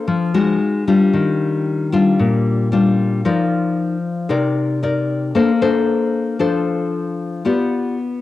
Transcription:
Already playing: D4 A4 C5
0.08 F3
0.34 G#3 D#4 F#4
0.88 G3 D4 F4
1.13 D#3
1.92 G3 D4 F4
2.19 A#2
2.72 G3 D4 F4
3.25 F3 D#4 A#4 D5
4.29 C3 D#4 A#4 D5
4.83 D#4 A#4 D5
5.35 A#3 D4 A4 C5
5.61 D4 A4 C5
6.39 F3 D4 A4 C5
7.45 B3 F4 G4 D5

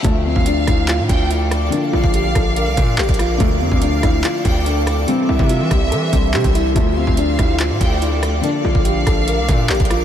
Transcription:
0.02 D2 D3 F3 A3 A4 D5 F5 D6, kick, closed hi-hat
0.06 D4 F4
0.26 C4 F5
0.36 D2, kick
0.46 D4, closed hi-hat
0.67 D2 E4, kick, cross-stick, closed hi-hat
0.88 F4, clap, closed hi-hat
0.99 A2
1.09 D2 G5, kick, closed hi-hat
1.31 E4, closed hi-hat
1.51 cross-stick, closed hi-hat
1.70 D3 F3 A#3 D4 A#4, closed hi-hat
1.74 D4 F4
1.93 A#1 F4 F5
2.04 A#1, kick
2.14 G4, closed hi-hat
2.35 A#1 A4, kick, cross-stick, closed hi-hat
2.56 A#4, closed hi-hat
2.67 C2
2.77 A#2, kick, closed hi-hat
2.98 A1 G4, clap, closed hi-hat
3.03 closed hi-hat
3.09 A#1, kick, closed hi-hat
3.14 closed hi-hat
3.19 F4, cross-stick, closed hi-hat
3.37 D2 D3 F3 A3 A4 D6, kick, closed hi-hat
3.41 D4 F4
3.61 F2 C4 F5
3.72 D2, kick
3.82 D4, closed hi-hat
4.03 D2 E4, kick, cross-stick, closed hi-hat
4.24 F4, clap, closed hi-hat
4.45 D2 G5, kick, closed hi-hat
4.66 D4, closed hi-hat
4.87 cross-stick, closed hi-hat
5.05 C3 E3 G3 C4 G4 C5 E5 C6, closed hi-hat
5.09 C4 E4
5.29 C2 E4 E5
5.39 C3, kick
5.49 F4, closed hi-hat
5.60 E3
5.71 C2 G4, kick, cross-stick, closed hi-hat
5.91 E3 A4, closed hi-hat
6.11 C2 C3 E3 G3 C4 D4, kick, closed hi-hat
6.34 C3 G4, clap, closed hi-hat
6.44 C2, kick, closed hi-hat
6.55 E4, closed hi-hat
6.73 D2 D3 F3 A3 A4 D5 F5 D6, kick, closed hi-hat
6.78 D4 F4
6.97 C4 F5
7.07 D2, kick
7.17 D4, closed hi-hat
7.39 D2 E4, kick, cross-stick, closed hi-hat
7.60 F4, clap, closed hi-hat
7.70 A2
7.81 D2 G5, kick, closed hi-hat
8.02 E4, closed hi-hat
8.23 cross-stick, closed hi-hat
8.41 D3 F3 A#3 D4 A#4 D6, closed hi-hat
8.45 D4 F4
8.64 A#1 F4 F5
8.75 A#1, kick
8.85 G4, closed hi-hat
9.07 A#1 A4, kick, cross-stick, closed hi-hat
9.28 A#4, closed hi-hat
9.38 C2
9.48 A#2, kick, closed hi-hat
9.69 A1 G4, clap, closed hi-hat
9.75 closed hi-hat
9.80 A#1, kick, closed hi-hat
9.85 closed hi-hat
9.90 F4, cross-stick, closed hi-hat

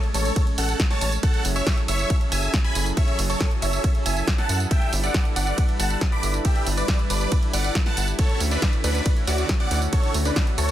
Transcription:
Already playing: G#3 A3 C#4
0.04 closed hi-hat
0.14 A1 A4 C#5, open hi-hat, tambourine
0.25 closed hi-hat, tambourine
0.36 kick, closed hi-hat, ride, tambourine
0.47 closed hi-hat
0.58 A1 A4 F#5, open hi-hat, tambourine
0.69 closed hi-hat, tambourine
0.80 kick, snare, closed hi-hat, ride, tambourine
0.91 C#5 A5, snare, closed hi-hat
1.01 A1, open hi-hat, tambourine
1.12 closed hi-hat, tambourine
1.23 F#3 E4 G#4 A4 F#5, kick, closed hi-hat, ride, tambourine
1.34 closed hi-hat
1.45 F#1, open hi-hat, tambourine
1.56 C#5 E5, closed hi-hat, tambourine
1.67 kick, snare, closed hi-hat, ride, tambourine
1.77 closed hi-hat
1.88 F#1 C#5 E5, open hi-hat, tambourine
1.99 closed hi-hat, tambourine
2.10 kick, closed hi-hat, ride, tambourine
2.21 closed hi-hat
2.32 F#1 E5 G#5, open hi-hat, tambourine
2.43 closed hi-hat, tambourine
2.54 kick, snare, closed hi-hat, ride, tambourine
2.64 G#5 B5, closed hi-hat
2.75 F#1, open hi-hat, tambourine
2.86 closed hi-hat, tambourine
2.97 C#5 E5, kick, closed hi-hat, ride, tambourine
3.08 closed hi-hat
3.19 F#1, open hi-hat, tambourine
3.30 A4 C#5, closed hi-hat, tambourine
3.41 kick, snare, closed hi-hat, ride
3.51 closed hi-hat
3.62 F#1 C#5 E5, open hi-hat, tambourine
3.73 closed hi-hat, tambourine
3.84 kick, closed hi-hat, ride, tambourine
3.95 closed hi-hat
4.06 F#1 E5 G#5, open hi-hat, tambourine
4.17 closed hi-hat, tambourine
4.27 kick, snare, closed hi-hat, ride, tambourine
4.38 F#5 A5, snare, closed hi-hat
4.49 F#2, open hi-hat, tambourine
4.60 closed hi-hat, tambourine
4.71 G3 D4 B4 E5 G5, kick, closed hi-hat, ride, tambourine
4.82 closed hi-hat
4.93 G1, open hi-hat, tambourine
5.04 D5 F#5, closed hi-hat, tambourine
5.14 kick, snare, closed hi-hat, ride
5.25 closed hi-hat
5.36 G1 D5 F#5, open hi-hat, tambourine
5.47 closed hi-hat, tambourine
5.58 kick, closed hi-hat, ride, tambourine
5.69 closed hi-hat
5.80 G1 F#5 A5, open hi-hat, tambourine
5.90 closed hi-hat, tambourine
6.01 kick, snare, closed hi-hat, ride, tambourine
6.12 B5 D6, closed hi-hat
6.23 G1, open hi-hat, tambourine
6.34 closed hi-hat, tambourine
6.45 G4 E5, kick, closed hi-hat, ride, tambourine
6.56 closed hi-hat
6.67 G1, open hi-hat, tambourine
6.77 B4 D5, closed hi-hat, tambourine
6.88 kick, snare, closed hi-hat, ride
6.99 closed hi-hat
7.10 G1 B4 D5, open hi-hat, tambourine
7.21 closed hi-hat, tambourine
7.32 kick, closed hi-hat, ride, tambourine
7.43 closed hi-hat
7.53 G1 D5 F#5, open hi-hat, tambourine
7.64 closed hi-hat, tambourine
7.75 kick, snare, closed hi-hat, ride, tambourine
7.86 F#5 A5, snare, closed hi-hat
7.97 G1, open hi-hat, tambourine
8.08 closed hi-hat, tambourine
8.19 D3 A3 C#4 F#4 A4 C#5, kick, closed hi-hat, ride, tambourine
8.30 closed hi-hat
8.40 D2, open hi-hat, tambourine
8.51 D4 B4, closed hi-hat, tambourine
8.62 kick, snare, closed hi-hat, ride, tambourine
8.73 closed hi-hat
8.84 D2 D4 B4, open hi-hat, tambourine
8.95 closed hi-hat, tambourine
9.06 kick, closed hi-hat, ride, tambourine
9.17 closed hi-hat
9.27 D2 F#4 D5, open hi-hat, tambourine
9.38 closed hi-hat, tambourine
9.49 kick, snare, closed hi-hat, ride, tambourine
9.60 D5 F#5, closed hi-hat
9.71 D2, open hi-hat, tambourine
9.82 closed hi-hat, tambourine
9.93 A4 C#5, kick, closed hi-hat, ride, tambourine
10.04 closed hi-hat
10.14 D2, open hi-hat, tambourine
10.25 D4 B4, closed hi-hat, tambourine
10.36 kick, snare, closed hi-hat, ride, tambourine
10.47 closed hi-hat
10.58 D2 A4 C#5, open hi-hat, tambourine

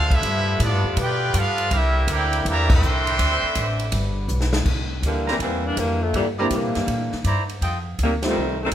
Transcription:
Already playing: D2 A3 D4 A4 C5 F5
0.10 F3 B3 D4 E4 A4 B4 E5, kick, ride
0.21 G2 F3 B3 G4, kick, ride
0.59 A2 F3 B3 D4 D5, kick, hi-hat pedal, ride
0.64 F4 A4
0.72 G2
0.84 F2
0.96 B2 B3 D4 G4, kick, ride
1.00 F4 B4 D5 G5
1.34 G2 B3 D4 F4 A4 B4 F5, kick, hi-hat pedal, ride
1.58 ride
1.71 C2 D3 G3 A#3 C4 D4 E4 G4 A#4 E5, kick, ride
2.08 D2 A#3 E4 G4 A#4 D5 G5, kick, hi-hat pedal, ride
2.12 E4
2.33 ride
2.45 E2 E3 G3 A#3 D5 A#5, kick, ride
2.49 G4 E5
2.70 E3 G3 C4 A#4 E5 G5 C6, kick, crash
2.82 C2, hi-hat pedal
3.07 ride
3.17 D2 A3 C4 D4, kick, ride
3.43 muted upright bass stroke
3.55 A1, kick, hi-hat pedal, ride
3.79 ride
3.92 G1 G3 B3, kick, ride
4.28 B1, hi-hat pedal
4.41 snare
4.53 snare
4.66 C2, kick, crash
5.02 D2 D3 E3, kick, hi-hat pedal, ride
5.06 G3 A#3
5.28 E3 G3 A#3 C4 E4 C5 D5 A#5, snare
5.39 E2 E3 G3 A#3 C4, kick, ride
5.64 E3 G3 A#3 D4
5.76 F2 D3 E3 G3 A#3, kick, hi-hat pedal, ride
6.01 A#2 D3 F3 A3
6.14 G2 A#2 D3 E3 G3, kick, ride
6.39 A#2 D3 E3 G3 A#3 C4 D4 E4 C5 D5 A#5
6.50 C3 D3 E3 G3 A#3, kick, hi-hat pedal, ride
6.64 A#2
6.75 G2, snare, ride
6.87 A#2, kick, ride
7.12 muted upright bass stroke, snare
7.24 G2 E4 C5 D5 A#5, kick, hi-hat pedal, ride
7.49 ride
7.61 F2 F4 A4 D#5 G5, kick, ride
7.98 D2, kick, hi-hat pedal, ride
8.03 C3 D#3 G3 A#3
8.22 G3 A3 C4 D#4 F4, snare, ride
8.27 D#3 G3 A3 C4
8.36 C2
8.63 D#3 G3 A3 C4

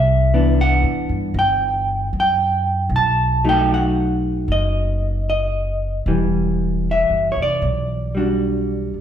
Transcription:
Already playing: C2 E5
0.34 E3 B3 D4
0.61 F#5
0.83 E2
1.09 G2
1.34 G1
1.39 G5
2.13 F#2
2.20 G5
2.89 B1
2.96 A5
3.44 F#3 A3 D#4
3.49 G5
3.74 F#5
4.48 F#1 D#5
5.30 D#5
6.06 E1 E3 G3
6.91 E5
7.10 F#1
7.32 C#5
7.36 F1
7.42 D5
7.62 B1
8.15 G3 D4 F#4
8.94 muted upright bass stroke

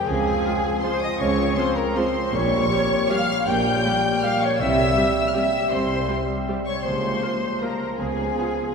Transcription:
0.05 C#2 C#3 F3 C4 F4 G#4 G#5
0.45 G#3 F4
0.82 F3 G#3 C4 F4 C5 C6
1.01 D#5 D#6
1.19 C#2 C#3 F3 C4 C#5 C#6
1.57 F3 G#3 C4 F4 C5 C6
1.76 A#4 A#5
1.96 F3 G#3 C4 F4 C5 C6
2.32 A#1 A#2 G3 A#3 G4 C#5 C#6
2.71 G3 G4
3.09 G3 G4 F5 F6
3.47 A#1 A#2 G3 A#3 G5 G6
3.85 G3 G4
4.22 G3 G4 F5 F6
4.40 C#5 C#6
4.58 C2 C3 G3 C4 G4 E5 E6
4.97 G3 G4
5.29 F6
5.34 G3 C4 G4 E5 E6
5.70 C2 C3 G3 C4 C5 C6
6.08 G3 G4
6.48 G3 G4
6.65 C#5 C#6
6.83 C#2 C#3 F3 A#3 C5 C6
7.22 A#3 F4
7.60 F3 A#3 F4 A#4 A#5
7.97 C#2 C#3 F3 B3 G#4 G#5
8.38 B3 F4

